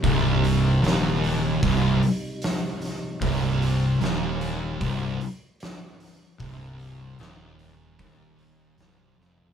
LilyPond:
<<
  \new Staff \with { instrumentName = "Tonewheel organ" } { \clef bass \time 4/4 \key c \minor \tempo 4 = 75 <c g ees'>1 | r1 | r1 | }
  \new Staff \with { instrumentName = "Distorted electric guitar" } { \clef bass \time 4/4 \key c \minor c,4 ees,4 c,8 r4. | c,4 ees,4 c,8 r4. | c,4 ees,4 ees,4 c,8 f,8 | }
  \new Staff \with { instrumentName = "Distorted electric guitar" } { \clef bass \time 4/4 \key c \minor c,4 ees,4 c,8 r4. | c,4 ees,4 c,8 r4. | c,4 ees,4 ees,4 c,8 f,8 | }
  \new Staff \with { instrumentName = "Fingered electric bass" } { \clef bass \time 4/4 \key c \minor c,,4 ees,,4 c,,8 r4. | c,,4 ees,,4 c,,8 r4. | c,,4 ees,,4 ees,,4 c,,8 f,,8 | }
  \new DrumStaff \with { instrumentName = "Drums" } \drummode { \time 4/4 <hho bd>8 hho8 <hho sn>8 hho8 <hho bd>8 hho8 <hho sn>8 <hho sn>8 | <hho bd>8 hho8 <hho sn>8 hho8 <hho bd>8 hho8 <hho sn>8 hho8 | <hho bd>8 hho8 <hho sn>8 hho8 <hho bd>8 hho8 <hho sn>8 sn16 tomfh16 | }
>>